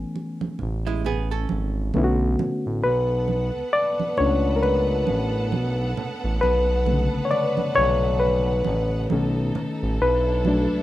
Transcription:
Already playing: reed electric piano E3 A3 B3 C#4 G#5
0.16 muted conga
0.41 high conga
0.59 analog synth bass A1, muted conga, low conga
0.87 hollow-body jazz guitar G#3 E4
1.04 hollow-body jazz guitar B3 G#4, low conga
1.31 hollow-body jazz guitar C#4 A4
1.49 analog synth bass G#1, high conga
1.94 analog synth bass B1, reed electric piano D3 A3 B3 C#4 E4, muted conga, high conga
2.04 reed electric piano F#4
2.39 muted conga, high conga, low conga
2.66 analog synth bass A1
2.84 analog synth bass B1, string section B3 A4 B4 F#5, reed electric piano B4
3.28 high conga
3.56 analog synth bass C#2
3.73 reed electric piano D5
4.00 high conga
4.17 analog synth bass C#2, reed electric piano A3 C#4 D4 C#5, muted conga, low conga
4.56 reed electric piano A#4
4.63 reed electric piano B4, muted conga
5.07 analog synth bass A1, high conga
5.52 analog synth bass B1, muted conga, high conga
5.97 low conga
6.24 analog synth bass A1
6.41 analog synth bass B1, reed electric piano B4, string section B4, muted conga
6.86 reed electric piano C#3 D3 A3, muted conga, high conga
7.14 analog synth bass B1
7.25 reed electric piano C#5
7.31 reed electric piano D5, muted conga
7.57 high conga
7.75 analog synth bass B1, reed electric piano C#5, low conga
8.20 reed electric piano B4
8.64 analog synth bass A1, high conga
9.10 analog synth bass B1, reed electric piano D#3 A3 C#4, string section D#4 A4, muted conga, high conga
9.55 muted conga, low conga
9.83 analog synth bass A1
10.01 analog synth bass B1, string section D4 E4, reed electric piano B4
10.45 reed electric piano F#3 A3 D4, high conga
10.72 analog synth bass C#2

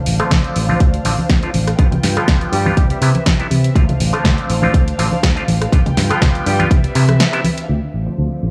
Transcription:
Already playing: violin section D4 C5 F5
0.06 fingered electric bass A1, open hi-hat, tambourine
0.20 clav D3 F3 A3 C4 F4, muted fingered electric bass stroke, cross-stick, closed hi-hat
0.31 fingered electric bass D2, kick, snare, closed hi-hat, tambourine, high conga, low conga
0.44 closed hi-hat
0.56 fingered electric bass A1, open hi-hat
0.69 clav D3 F3 A3 C4 F4, tambourine, high conga
0.80 fingered electric bass D2, kick, closed hi-hat
0.94 closed hi-hat, tambourine
1.05 fingered electric bass A1, clav D3 F3 A3 C4 F4, open hi-hat, tambourine
1.18 muted fingered electric bass stroke, tambourine, high conga
1.29 fingered electric bass D2, kick, snare, closed hi-hat
1.43 clav D3 F3 A3 C4 F4, closed hi-hat
1.54 fingered electric bass A1, open hi-hat, tambourine, high conga
1.67 cross-stick, closed hi-hat, tambourine
1.79 fingered electric bass G1, clav D3 F3 G3 B3 F4, violin section F4 B4 G5, kick, closed hi-hat
1.92 closed hi-hat, high conga, low conga
2.03 fingered electric bass G2, snare, open hi-hat
2.17 clav D3 F3 G3 B3 F4, muted fingered electric bass stroke, cross-stick, closed hi-hat, tambourine
2.28 fingered electric bass G1, kick, snare, closed hi-hat, tambourine, high conga, low conga
2.41 closed hi-hat, tambourine
2.52 fingered electric bass G2, horn section G3 G4, open hi-hat, tambourine
2.66 clav D3 F3 G3 B3 F4, tambourine, high conga
2.77 fingered electric bass C2, horn section G3 G4, violin section C4 E5, kick, closed hi-hat, tambourine
2.90 horn section G3 G4, muted fingered electric bass stroke, closed hi-hat, tambourine
3.01 fingered electric bass C3, clav C3 E3 G3 B3 E4, open hi-hat
3.15 muted fingered electric bass stroke, closed hi-hat, tambourine, high conga
3.26 fingered electric bass C2, kick, snare, closed hi-hat
3.39 clav C3 E3 G3 B3 E4, closed hi-hat
3.51 fingered electric bass C3, open hi-hat, tambourine, high conga
3.64 closed hi-hat, tambourine
3.75 fingered electric bass D2, clav D3 F3 A3 C4 F4, violin section D4 C5 F5, kick, closed hi-hat
3.89 closed hi-hat, high conga, low conga
4.00 fingered electric bass A1, open hi-hat, tambourine
4.13 clav D3 F3 A3 C4 F4, muted fingered electric bass stroke, cross-stick, closed hi-hat, tambourine
4.24 fingered electric bass D2, kick, snare, closed hi-hat, tambourine, high conga, low conga
4.38 closed hi-hat, tambourine
4.49 fingered electric bass A1, open hi-hat, tambourine
4.62 clav D3 F3 A3 C4 F4, tambourine, high conga
4.74 fingered electric bass D2, kick, closed hi-hat, tambourine
4.87 closed hi-hat, tambourine
4.98 fingered electric bass A1, clav D3 F3 A3 C4 F4, open hi-hat, tambourine
5.12 tambourine, high conga
5.23 fingered electric bass D2, kick, snare, closed hi-hat
5.36 clav D3 F3 A3 C4 F4, closed hi-hat
5.48 fingered electric bass A1, open hi-hat, tambourine, high conga
5.62 cross-stick, closed hi-hat, tambourine
5.72 fingered electric bass G1, clav D3 F3 G3 B3 F4, violin section F4 B4 G5, kick, closed hi-hat
5.86 muted fingered electric bass stroke, closed hi-hat, tambourine, high conga, low conga
5.97 fingered electric bass G2, snare, open hi-hat, tambourine
6.10 clav D3 F3 G3 B3 F4, muted fingered electric bass stroke, cross-stick, closed hi-hat, tambourine
6.21 fingered electric bass G1, kick, snare, closed hi-hat, tambourine, high conga, low conga
6.35 closed hi-hat, tambourine
6.46 fingered electric bass G2, horn section G3 G4, open hi-hat, tambourine
6.59 clav D3 F3 G3 B3 F4, closed hi-hat, tambourine, high conga
6.70 fingered electric bass C2, violin section C4 E5, kick, closed hi-hat, tambourine
6.84 muted fingered electric bass stroke, closed hi-hat, tambourine
6.95 clav C3 E3 G3 B3 E4, fingered electric bass C3, open hi-hat, tambourine
7.08 cross-stick, closed hi-hat, tambourine, high conga
7.20 snare, closed hi-hat
7.33 clav C3 E3 G3 B3 E4, closed hi-hat, tambourine
7.44 open hi-hat, tambourine, high conga
7.57 closed hi-hat, tambourine
7.69 fingered electric bass D2, clav D3 F3 A3 C4 F4, violin section D4 C5 F5
7.94 fingered electric bass A1
8.06 clav D3 F3 A3 C4 F4, muted fingered electric bass stroke
8.18 fingered electric bass D2
8.43 fingered electric bass A1

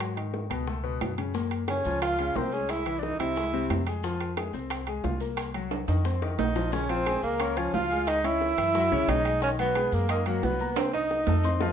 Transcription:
Already playing: upright bass G#2, grand piano F#3 F#4
0.00 high bongo, high timbale
0.17 grand piano D#3 D#4, high bongo, high timbale
0.34 high bongo, low timbale
0.50 upright bass C#2, grand piano B2 B3, high bongo, high timbale
0.67 grand piano A3 A4, high bongo
0.84 grand piano B2 B3
1.01 upright bass F#2, high bongo, low bongo, high timbale, low timbale
1.18 grand piano C#3 C#4, high timbale
1.34 grand piano A#2 A#3, high bongo, maracas
1.51 high bongo, high timbale, maracas
1.68 grand piano C#3 C#4, tenor saxophone C#4, flute C#5, high bongo, high timbale, low timbale, maracas
1.84 upright bass C#2, grand piano F3 F4, high bongo, maracas
2.02 tenor saxophone F4, flute F5, high bongo, high timbale, maracas
2.19 grand piano C#3 C#4, high timbale, maracas
2.35 upright bass C2, grand piano A#3 A#4, tenor saxophone C4, flute C5, high bongo, low bongo, low timbale, maracas
2.52 grand piano G#3 G#4, tenor saxophone C#4, flute C#5, maracas
2.69 tenor saxophone E4, flute E5, high bongo, high timbale, maracas
2.86 grand piano E3 E4, high bongo, high timbale, maracas
2.99 tenor saxophone D4 D#4, flute D5 D#5, high bongo, low timbale, maracas
3.19 upright bass C2, grand piano C3 C4, tenor saxophone E4, flute E5, high timbale, maracas
3.36 grand piano G#3 G#4, high bongo, maracas
3.53 grand piano C3 C4, maracas
3.70 upright bass F2, high bongo, low bongo, high timbale, low timbale, maracas
3.86 grand piano G#3 G#4, high timbale, maracas
4.03 grand piano F3 F4, high bongo, maracas
4.20 high bongo, high timbale, maracas
4.36 grand piano G#3 G#4, high bongo, high timbale, low timbale, maracas
4.53 upright bass C2, grand piano C4 C5, high bongo, maracas
4.70 high bongo, high timbale, maracas
4.86 grand piano G#3 G#4, high timbale, maracas
5.03 upright bass C2, grand piano F4 F5, high bongo, low bongo, low timbale, maracas
5.20 grand piano A#3 A#4, maracas
5.37 high bongo, high timbale, maracas
5.54 grand piano F#3 F#4, high bongo, high timbale, maracas
5.71 high bongo, high timbale, maracas
5.88 upright bass F2, grand piano D#3 D#4, high bongo, high timbale, maracas
6.05 grand piano C4 C5, high bongo, maracas
6.22 grand piano D#3 D#4, high bongo, maracas
6.38 upright bass A#1, tenor saxophone D#4, flute D#5, high bongo, low timbale, maracas
6.55 grand piano F3 F4, low bongo, low timbale, maracas
6.72 grand piano C#3 C#4 C#5, tenor saxophone C#4, flute C#5, high bongo, maracas
6.89 grand piano F3 F4 F5, tenor saxophone C4, flute C5, high bongo, high timbale, maracas
7.05 grand piano G#3 G#4 G#5, high bongo, high timbale, low timbale, maracas
7.22 upright bass C#2, tenor saxophone A#3, flute A#4, high bongo, maracas
7.39 grand piano C#4 C#5 C#6, high bongo, high timbale, maracas
7.56 grand piano F3 F4 F5, tenor saxophone C#4, flute C#5, high timbale, maracas
7.73 upright bass C#2, tenor saxophone F4, flute F5, high bongo, low bongo, low timbale, maracas
7.90 grand piano G#3 G#4 G#5, maracas
8.07 tenor saxophone D#4, flute D#5, high bongo, high timbale, maracas
8.24 grand piano C#4 C#5 C#6, tenor saxophone E4, flute E5, high bongo, high timbale, maracas
8.41 high bongo, low timbale, maracas
8.58 upright bass F#2, grand piano E3 E4 E5, high bongo, high timbale, maracas
8.74 grand piano F#3 F#4 F#5, high bongo, maracas
8.91 upright bass C2, grand piano C#3 C#4 C#5, maracas
9.08 upright bass B1, tenor saxophone D#4, flute D#5, high bongo, low bongo, high timbale, low timbale, maracas
9.25 grand piano G#3 G#4 G#5, high timbale, maracas
9.41 grand piano D#3 D#4 D#5, tenor saxophone C#4, flute C#5, high bongo, maracas
9.58 grand piano F#3 F#4 F#5, tenor saxophone B3, flute B4, high bongo, high timbale, maracas
9.75 grand piano G#3 G#4 G#5, high bongo, high timbale, low timbale, maracas
9.92 upright bass F#2, tenor saxophone A#3, flute A#4, high bongo, maracas
10.09 grand piano D#4 D#5 D#6, high bongo, high timbale, maracas
10.26 grand piano F#3 F#4 F#5, tenor saxophone A#3, flute A#4, high timbale, maracas
10.42 upright bass C2, tenor saxophone B3, flute B4, high bongo, low bongo, low timbale, maracas
10.59 grand piano A#3 A#4 A#5, maracas
10.76 tenor saxophone C4, flute C5, high bongo, high timbale, maracas
10.93 grand piano D#4 D#5 D#6, tenor saxophone D#4, flute D#5, high bongo, high timbale, maracas
11.10 high bongo, maracas
11.26 upright bass F2, grand piano A3 A4 A5, high bongo, low timbale, maracas
11.43 grand piano C4 C5 C6, high bongo, maracas
11.60 grand piano F3 F4 F5, high bongo, low timbale, maracas

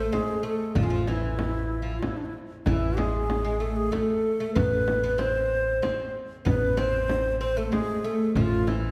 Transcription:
Already playing: oud A3, ney A4
0.12 oud G#3, ney G#4, frame drum
0.43 oud A3, ney A4
0.75 upright bass A1, oud F3, ney F4, frame drum
0.83 oud G#3
0.90 oud F3
1.07 oud E3, ney E4, frame drum
1.39 frame drum
1.82 oud F3
1.99 ney F4, frame drum
2.07 ney E4
2.17 ney D4
2.25 ney E4
2.66 upright bass A1, oud E3, ney E4, frame drum
2.97 oud G#3, ney G#4, frame drum
3.30 frame drum
3.44 oud G#3
3.60 oud A3, ney A4
3.76 ney G#4
3.92 oud A3, ney A4, frame drum
4.40 oud A3
4.55 upright bass A1, oud B3, ney B4, frame drum
4.88 frame drum
5.04 oud B3
5.18 oud C4, ney C5, frame drum
5.82 oud C4, frame drum
6.45 upright bass A1, oud B3, ney B4, frame drum
6.77 oud C4, ney C5, frame drum
7.09 frame drum
7.41 oud C4, ney C5
7.57 oud A3, ney A4
7.72 oud G#3, ney G#4, frame drum
8.04 oud A3, ney A4
8.35 upright bass A1, oud F3, ney F4, frame drum
8.67 oud E3, ney E4, frame drum

